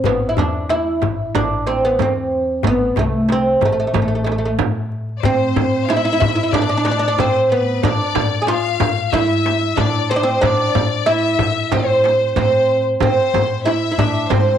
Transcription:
0.04 0.35 A1 medium
0.04 0.29 B3 medium
0.04 darbuka dum medium
0.04 frame drum medium
0.29 0.37 E4 medium
0.37 0.98 E2 medium
0.37 0.70 D4 medium
0.37 darbuka dum medium
0.37 frame drum medium
0.53 darbuka ka soft
0.69 1.35 E4 medium
0.69 darbuka tek medium
0.69 frame drum medium
0.87 darbuka ka soft
1.02 1.32 A1 medium
1.02 frame drum medium
1.02 darbuka dum medium
1.35 1.96 A1 medium
1.35 1.65 D4 medium
1.35 frame drum medium
1.35 darbuka dum medium
1.67 1.84 C4 medium
1.67 darbuka tek medium
1.67 frame drum medium
1.85 2.01 B3 medium
1.99 2.60 E2 medium
1.99 2.67 C4 medium
1.99 frame drum medium
1.99 darbuka dum medium
2.16 darbuka ka soft
2.32 darbuka ka soft
2.63 2.94 A1 medium
2.63 2.99 B3 medium
2.63 darbuka dum medium
2.63 frame drum medium
2.96 3.58 C2 medium
2.96 3.31 A3 medium
2.96 darbuka dum medium
2.96 frame drum medium
3.29 3.64 C4 medium
3.29 darbuka tek medium
3.29 frame drum medium
3.61 3.91 A1 medium
3.61 frame drum medium
3.61 darbuka dum medium
3.65 3.71 A3 medium
3.72 3.78 A3 soft
3.78 3.85 A3 soft
3.78 darbuka ka soft
3.87 3.93 A3 soft
3.94 4.55 A1 medium
3.94 4.01 A3 soft
3.94 frame drum medium
3.94 darbuka dum medium
4.02 4.07 A3 soft
4.08 4.14 A3 soft
4.15 4.22 A3 soft
4.24 4.30 A3 soft
4.24 darbuka tek medium
4.24 frame drum medium
4.32 4.37 A3 soft
4.38 4.44 A3 soft
4.45 4.52 A3 soft
4.59 5.20 A2 medium
4.59 frame drum medium
4.59 darbuka dum medium
4.75 darbuka ka soft
4.92 darbuka ka soft
5.09 darbuka ka soft
5.17 5.24 D5 soft
5.23 5.54 A2 medium
5.23 5.91 C4 medium
5.23 5.82 C5 medium
5.23 darbuka dum loud
5.23 frame drum medium
5.56 6.17 A2 medium
5.56 frame drum medium
5.56 darbuka dum loud
5.73 darbuka ka soft
5.83 5.90 F5 medium
5.89 5.95 E4 medium
5.89 6.54 E5 medium
5.89 darbuka tek medium
5.89 frame drum medium
5.97 6.04 E4 medium
6.05 6.12 E4 medium
6.13 6.19 E4 medium
6.20 6.52 A2 medium
6.20 6.27 E4 medium
6.20 darbuka dum loud
6.20 frame drum medium
6.28 6.34 E4 medium
6.35 6.42 E4 medium
6.35 darbuka ka soft
6.43 6.50 E4 medium
6.53 7.15 A2 medium
6.53 6.61 D4 medium
6.53 7.19 D5 medium
6.53 darbuka dum loud
6.53 frame drum medium
6.62 6.68 D4 medium
6.69 6.76 D4 medium
6.77 6.84 D4 medium
6.85 6.90 D4 medium
6.85 darbuka tek medium
6.85 frame drum medium
6.91 6.98 D4 medium
6.99 7.07 D4 medium
7.08 7.15 D4 medium
7.18 7.79 A2 medium
7.18 7.52 C4 medium
7.18 7.44 C5 medium
7.18 frame drum medium
7.18 darbuka dum medium
7.36 darbuka ka soft
7.45 7.51 C5 soft
7.52 7.81 B3 medium
7.52 7.84 B4 medium
7.83 7.98 A2 loud
7.83 8.41 D4 medium
7.83 8.44 D5 medium
7.83 darbuka dum loud
7.83 frame drum loud
8.15 8.77 A2 medium
8.15 frame drum loud
8.15 darbuka dum medium
8.42 8.48 G#4 medium
8.47 9.13 F4 medium
8.47 9.13 F5 medium
8.47 darbuka tek medium
8.47 frame drum medium
8.80 9.11 A2 medium
8.80 frame drum medium
8.80 darbuka dum loud
8.97 darbuka ka soft
9.12 9.74 G#2 medium
9.12 9.77 E4 medium
9.12 9.78 E5 medium
9.12 darbuka dum medium
9.12 frame drum medium
9.46 darbuka tek medium
9.46 frame drum medium
9.77 10.38 A2 medium
9.77 10.10 D4 medium
9.77 10.10 D5 medium
9.77 frame drum medium
9.77 darbuka dum medium
9.94 darbuka ka soft
10.10 10.16 C4 medium
10.10 10.42 C5 medium
10.16 10.23 D4 medium
10.23 10.41 C4 medium
10.41 10.72 A2 medium
10.41 11.06 D4 medium
10.41 11.08 D5 medium
10.41 frame drum medium
10.41 darbuka dum medium
10.75 11.36 A2 medium
10.75 frame drum medium
10.75 darbuka dum medium
11.06 11.73 E4 loud
11.06 11.72 E5 medium
11.06 darbuka tek medium
11.06 frame drum medium
11.39 11.69 A2 medium
11.39 frame drum medium
11.39 darbuka dum loud
11.56 darbuka ka soft
11.71 12.33 A2 medium
11.71 12.35 C4 medium
11.71 12.35 C5 medium
11.71 frame drum medium
11.71 darbuka dum medium
12.04 darbuka tek medium
12.04 frame drum medium
12.36 12.97 A2 medium
12.36 12.82 C4 medium
12.36 12.82 C5 medium
12.36 frame drum medium
12.36 darbuka dum medium
12.54 darbuka ka soft
13.00 13.16 A2 medium
13.00 13.68 C4 medium
13.00 13.62 C5 medium
13.00 frame drum medium
13.00 darbuka dum medium
13.34 13.94 A2 medium
13.34 frame drum medium
13.34 darbuka dum medium
13.52 darbuka ka soft
13.66 13.90 E4 medium
13.66 14.31 E5 medium
13.66 darbuka tek medium
13.66 frame drum medium
13.92 13.98 E4 medium
13.98 14.28 A2 medium
13.98 14.32 D4 medium
13.98 frame drum medium
13.98 darbuka dum medium
14.17 darbuka ka soft
14.30 14.58 G#2 medium
14.30 14.58 C4 medium
14.30 14.58 C5 medium
14.30 frame drum medium
14.30 darbuka dum medium

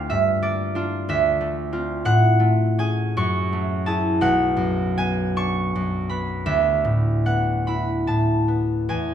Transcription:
0.00 0.13 D2 medium
0.00 0.14 A3 soft
0.00 0.13 C4 soft
0.00 0.74 D4 soft
0.00 0.75 F4 soft
0.00 0.41 D5 medium
0.00 2.09 F5 medium
0.00 0.24 G5 loud
0.10 1.12 G2 medium
0.10 0.66 E5 medium
0.42 1.12 A#3 soft
0.42 2.08 D5 medium
0.75 2.08 D4 medium
0.75 1.71 F4 medium
1.09 2.09 D2 medium
1.09 4.23 E5 loud
1.41 2.38 A3 medium
1.72 2.08 C4 soft
1.72 2.08 F4 medium
2.05 3.19 A2 medium
2.05 3.31 F#5 loud
2.40 3.51 A3 medium
2.78 4.23 C#4 soft
2.78 3.86 G#4 medium
2.78 4.96 G#5 medium
3.17 4.23 F#2 medium
3.17 4.23 C#6 loud
3.53 4.23 A3 medium
3.86 4.24 E4 soft
3.86 6.49 G#4 soft
3.86 4.23 A5 medium
4.21 6.49 B1 medium
4.21 7.25 F#5 loud
4.57 5.74 F#2 medium
4.98 6.09 B3 medium
4.98 6.49 G#5 loud
5.36 8.91 D4 medium
5.36 6.61 C#6 loud
5.75 6.50 F#2 soft
6.09 7.24 B3 soft
6.09 7.66 B5 medium
6.46 8.91 D2 medium
6.46 9.14 E5 medium
6.84 8.07 A2 soft
7.26 8.47 B3 soft
7.26 9.14 F#5 medium
7.67 9.14 E4 soft
7.67 9.14 B5 medium
8.07 8.92 A2 soft
8.07 8.91 A5 medium
8.48 9.14 B3 soft
8.89 9.14 E2 medium
8.89 9.14 G#5 medium

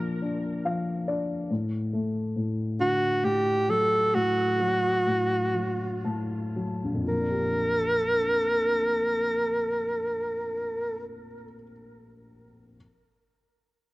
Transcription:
0.00 1.46 A#2 soft
0.00 0.65 F3 soft
0.00 0.22 D4 soft
0.22 1.06 D4 soft
0.65 1.47 F3 soft
0.65 1.04 F5 soft
1.08 1.49 D4 soft
1.08 1.47 D5 soft
1.50 2.35 A2 soft
1.93 3.64 A3 soft
2.36 3.22 A2 soft
2.79 4.55 D3 soft
2.79 3.26 F#4 medium
3.23 4.13 A2 soft
3.23 3.71 G4 medium
3.69 4.58 F#3 soft
3.69 4.16 A4 medium
4.14 5.05 A2 soft
4.14 6.04 F#4 medium
4.59 5.53 F#3 soft
5.06 6.03 A2 soft
5.54 6.54 F#3 soft
6.05 7.04 A2 soft
6.05 7.03 A5 soft
6.56 7.06 F#3 soft
6.84 11.25 A#1 soft
6.94 11.35 F2 soft
7.03 11.44 F3 soft
7.08 11.02 A#4 medium
7.12 11.53 A#3 soft
7.21 11.62 D4 soft
7.31 11.72 G4 soft

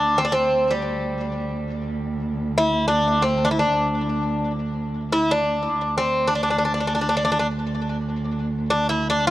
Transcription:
0.00 5.76 D2 medium
0.00 0.19 D4 medium
0.18 0.25 C4 medium
0.25 0.32 D4 medium
0.32 0.72 C4 medium
0.71 1.56 G3 medium
2.58 2.87 E4 medium
2.88 3.22 D4 medium
3.22 3.44 C4 medium
3.45 3.50 D4 medium
3.51 3.57 E4 medium
3.59 4.52 D4 medium
5.13 5.31 E4 medium
5.31 5.97 D4 medium
5.76 9.30 D2 medium
5.98 6.28 C4 medium
6.28 6.34 D4 medium
6.35 6.42 D4 soft
6.43 6.49 D4 soft
6.50 6.57 D4 soft
6.58 6.64 D4 soft
6.65 6.72 D4 soft
6.74 6.79 D4 soft
6.80 6.86 D4 soft
6.87 6.94 D4 soft
6.95 7.00 D4 soft
7.01 7.08 D4 soft
7.09 7.15 D4 soft
7.17 7.24 D4 soft
7.25 7.31 D4 soft
7.32 7.38 D4 medium
7.39 7.46 D4 medium
8.70 8.89 D4 medium
8.89 9.09 E4 medium
9.10 9.27 D4 medium
9.27 9.30 F4 medium

